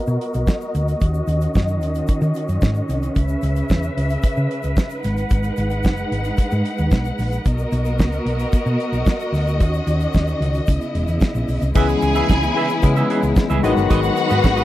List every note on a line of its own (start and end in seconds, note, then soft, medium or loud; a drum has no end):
0.00 1.00 B3 medium
0.00 3.12 F#4 medium
0.00 1.00 A#4 medium
0.00 3.13 D#5 medium
0.07 0.17 B2 medium
0.07 shaker soft
0.21 closed hi-hat soft
0.34 0.44 B1 medium
0.34 closed hi-hat soft
0.34 shaker soft
0.47 kick loud
0.47 snare loud
0.47 shaker medium
0.61 shaker soft
0.75 0.93 D2 medium
0.75 closed hi-hat medium
0.75 shaker medium
0.88 closed hi-hat soft
0.88 shaker medium
1.01 1.20 D#2 medium
1.01 3.14 D#3 medium
1.01 5.00 C#4 medium
1.01 kick loud
1.01 closed hi-hat medium
1.01 shaker medium
1.14 shaker medium
1.27 1.46 D#2 medium
1.27 closed hi-hat medium
1.27 shaker medium
1.41 closed hi-hat soft
1.41 shaker medium
1.54 1.81 F#2 medium
1.54 kick loud
1.54 snare medium
1.54 shaker medium
1.68 shaker medium
1.81 2.00 D#2 medium
1.81 closed hi-hat medium
1.81 shaker medium
1.95 closed hi-hat soft
1.95 shaker medium
2.08 muted fingered electric bass stroke soft
2.08 kick loud
2.08 closed hi-hat medium
2.08 shaker medium
2.21 2.31 D#3 loud
2.21 closed hi-hat soft
2.21 shaker soft
2.34 closed hi-hat medium
2.34 shaker medium
2.48 2.58 F#2 medium
2.48 closed hi-hat soft
2.48 shaker medium
2.62 2.81 G#2 medium
2.62 kick loud
2.62 snare loud
2.62 shaker medium
2.75 shaker medium
2.89 3.08 C2 medium
2.89 closed hi-hat medium
2.89 shaker medium
3.03 closed hi-hat soft
3.03 shaker soft
3.15 3.35 C#2 medium
3.15 5.02 C#3 medium
3.15 7.42 B4 medium
3.15 5.02 E5 medium
3.15 kick loud
3.15 closed hi-hat medium
3.15 shaker medium
3.28 shaker soft
3.42 3.61 C#2 medium
3.42 closed hi-hat medium
3.42 shaker medium
3.56 closed hi-hat soft
3.56 shaker medium
3.69 3.88 E2 medium
3.69 kick medium
3.69 snare medium
3.69 shaker medium
3.83 shaker medium
3.97 4.15 C#2 medium
3.97 closed hi-hat medium
4.10 closed hi-hat soft
4.10 shaker soft
4.23 muted fingered electric bass stroke soft
4.23 kick loud
4.23 closed hi-hat medium
4.23 shaker medium
4.36 4.46 C#3 medium
4.36 shaker soft
4.51 closed hi-hat medium
4.63 4.73 C#2 medium
4.63 closed hi-hat soft
4.63 shaker medium
4.77 kick loud
4.77 snare loud
4.77 shaker medium
4.90 closed hi-hat soft
4.90 shaker medium
5.04 5.23 G#1 loud
5.04 7.43 G#3 medium
5.04 7.43 D#4 medium
5.04 7.43 F#5 medium
5.04 snare soft
5.04 closed hi-hat medium
5.04 shaker soft
5.17 closed hi-hat soft
5.17 shaker medium
5.30 5.50 G#1 medium
5.30 kick loud
5.30 closed hi-hat medium
5.30 shaker medium
5.43 closed hi-hat soft
5.43 shaker medium
5.57 5.85 G#1 medium
5.57 closed hi-hat medium
5.57 shaker medium
5.70 closed hi-hat soft
5.70 shaker soft
5.84 6.03 F#1 medium
5.84 kick medium
5.84 snare loud
5.84 shaker medium
5.97 shaker medium
6.11 6.30 G#1 medium
6.11 closed hi-hat medium
6.24 closed hi-hat soft
6.24 shaker soft
6.37 muted fingered electric bass stroke soft
6.37 kick loud
6.37 closed hi-hat medium
6.37 shaker medium
6.51 6.61 G#2 medium
6.51 closed hi-hat soft
6.51 shaker soft
6.65 closed hi-hat medium
6.78 6.88 D#2 medium
6.78 closed hi-hat soft
6.78 shaker soft
6.91 7.10 B1 medium
6.91 kick loud
6.91 snare medium
6.91 shaker medium
7.05 closed hi-hat soft
7.05 shaker soft
7.19 7.37 A#1 medium
7.19 snare soft
7.19 open hi-hat medium
7.19 shaker soft
7.32 closed hi-hat soft
7.32 shaker medium
7.45 7.64 B1 medium
7.45 9.59 B3 medium
7.45 10.65 F#4 medium
7.45 9.59 A#4 medium
7.45 11.72 D#5 medium
7.45 kick loud
7.45 closed hi-hat medium
7.45 shaker medium
7.58 shaker soft
7.72 7.99 B1 loud
7.72 closed hi-hat medium
7.72 shaker medium
7.85 closed hi-hat soft
7.85 shaker soft
7.99 8.18 C#2 medium
7.99 kick loud
7.99 snare loud
7.99 shaker medium
8.12 closed hi-hat soft
8.12 shaker medium
8.26 8.44 B1 medium
8.26 closed hi-hat medium
8.39 closed hi-hat soft
8.39 shaker soft
8.52 muted fingered electric bass stroke medium
8.52 kick loud
8.52 closed hi-hat medium
8.52 shaker medium
8.66 8.75 B2 medium
8.66 shaker soft
8.80 closed hi-hat medium
8.92 9.02 B1 medium
8.92 closed hi-hat soft
8.92 shaker medium
9.06 kick loud
9.06 snare loud
9.06 shaker medium
9.20 closed hi-hat soft
9.20 shaker soft
9.32 9.60 D2 medium
9.32 snare soft
9.32 open hi-hat medium
9.32 shaker medium
9.47 closed hi-hat soft
9.47 shaker medium
9.60 9.79 D#2 medium
9.60 10.67 D#3 medium
9.60 10.67 C#4 medium
9.60 kick loud
9.60 closed hi-hat medium
9.60 shaker medium
9.74 shaker soft
9.87 10.06 D#2 medium
9.87 closed hi-hat medium
9.87 shaker medium
10.00 closed hi-hat soft
10.00 shaker medium
10.14 10.33 D#2 medium
10.14 kick loud
10.14 snare medium
10.14 shaker medium
10.27 shaker soft
10.40 10.59 C#2 medium
10.40 closed hi-hat medium
10.54 closed hi-hat soft
10.54 shaker soft
10.67 10.77 C#2 loud
10.67 11.74 C#3 medium
10.67 11.74 B3 medium
10.67 11.74 E4 medium
10.67 kick loud
10.67 closed hi-hat medium
10.67 shaker medium
10.81 closed hi-hat soft
10.81 shaker medium
10.95 11.04 E1 loud
10.95 closed hi-hat medium
11.08 11.17 E2 medium
11.08 closed hi-hat soft
11.08 shaker medium
11.21 kick loud
11.21 snare loud
11.21 shaker medium
11.35 11.44 A#1 medium
11.35 shaker medium
11.48 11.58 B1 medium
11.48 open hi-hat medium
11.48 shaker medium
11.62 11.71 C2 medium
11.62 closed hi-hat soft
11.62 shaker medium
11.75 11.94 C#2 medium
11.75 13.61 C#3 medium
11.75 12.57 E3 medium
11.75 14.64 G#3 medium
11.75 12.57 G#3 medium
11.75 13.61 B3 medium
11.75 12.57 B3 medium
11.75 12.57 C#4 medium
11.75 13.61 E4 loud
11.75 11.97 G#4 medium
11.75 13.33 G#4 loud
11.75 12.57 G#4 medium
11.75 11.89 B4 loud
11.75 11.88 E5 medium
11.75 13.33 G#5 loud
11.75 kick loud
11.75 crash medium
11.75 shaker medium
11.88 muted clean electric guitar stroke soft
11.88 shaker medium
12.02 12.21 C#2 loud
12.02 muted clean electric guitar stroke soft
12.02 closed hi-hat medium
12.02 shaker medium
12.15 12.33 G#4 medium
12.15 12.33 B4 medium
12.15 12.32 E5 medium
12.15 closed hi-hat soft
12.15 shaker medium
12.29 12.48 C#2 medium
12.29 kick loud
12.29 snare loud
12.29 shaker medium
12.43 muted clean electric guitar stroke soft
12.43 closed hi-hat soft
12.43 shaker medium
12.56 12.77 G#4 medium
12.56 12.70 B4 medium
12.56 12.69 E5 medium
12.56 open hi-hat medium
12.69 muted clean electric guitar stroke medium
12.69 closed hi-hat medium
12.69 shaker medium
12.82 13.01 C#3 loud
12.82 13.43 E3 medium
12.82 13.44 G#3 medium
12.82 13.44 B3 medium
12.82 13.44 C#4 medium
12.82 13.44 G#4 medium
12.82 muted clean electric guitar stroke soft
12.82 kick loud
12.82 closed hi-hat medium
12.82 shaker medium
12.96 13.09 G#4 medium
12.96 13.10 B4 medium
12.96 13.10 E5 medium
12.96 closed hi-hat soft
12.96 shaker medium
13.10 13.27 G#4 medium
13.10 13.23 B4 medium
13.10 13.22 E5 medium
13.10 closed hi-hat medium
13.23 13.32 C#2 medium
13.23 muted clean electric guitar stroke soft
13.23 closed hi-hat soft
13.23 shaker medium
13.36 muted clean electric guitar stroke soft
13.36 kick loud
13.36 snare loud
13.36 shaker medium
13.50 13.59 C#2 medium
13.50 13.63 G#4 medium
13.50 13.63 B4 medium
13.50 13.64 E5 medium
13.50 closed hi-hat soft
13.50 shaker medium
13.63 13.73 G#1 loud
13.63 14.49 D#3 loud
13.63 14.49 F#3 medium
13.63 14.49 G#3 medium
13.63 14.49 B3 medium
13.63 14.64 D#4 medium
13.63 13.70 E4 medium
13.63 13.80 F#4 medium
13.63 14.64 F#4 medium
13.63 14.64 F#4 loud
13.63 14.64 B4 medium
13.63 13.76 B4 medium
13.63 13.75 D#5 medium
13.63 14.64 F#5 loud
13.63 closed hi-hat medium
13.63 shaker medium
13.70 14.52 F#4 loud
13.76 13.86 G1 medium
13.76 muted clean electric guitar stroke soft
13.76 closed hi-hat soft
13.76 shaker medium
13.90 14.09 G#1 loud
13.90 14.11 F#4 medium
13.90 14.02 B4 medium
13.90 14.02 D#5 loud
13.90 kick loud
13.90 closed hi-hat loud
13.90 shaker medium
14.03 muted clean electric guitar stroke soft
14.03 closed hi-hat soft
14.03 shaker medium
14.16 muted clean electric guitar stroke soft
14.16 closed hi-hat medium
14.16 shaker medium
14.29 14.40 G#2 medium
14.29 14.42 F#4 medium
14.29 14.43 B4 medium
14.29 14.43 D#5 medium
14.29 closed hi-hat soft
14.29 shaker medium
14.43 14.62 G#1 loud
14.43 muted clean electric guitar stroke soft
14.43 kick loud
14.43 snare loud
14.43 shaker medium
14.56 14.64 F#4 soft
14.56 14.64 B4 medium
14.56 14.64 D#5 medium
14.56 shaker medium